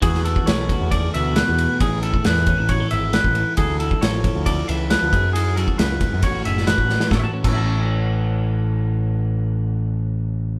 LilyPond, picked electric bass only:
\new Staff \with { instrumentName = "Picked electric bass" } { \clef bass \time 4/4 \key a \major \tempo 4 = 136 e,4 b,,8. e,8. d,8. e,8 r16 | a,,4 e,8. a,,8. gis,,8. a,,8 r16 | d,4 a,,8. d,8. cis,8. d,16 fis,8~ | fis,4 cis,8. fis,16 a,,8 fis,,8. a,,8 r16 |
a,,16 r8 a,,2.~ a,,16~ | a,,1 | }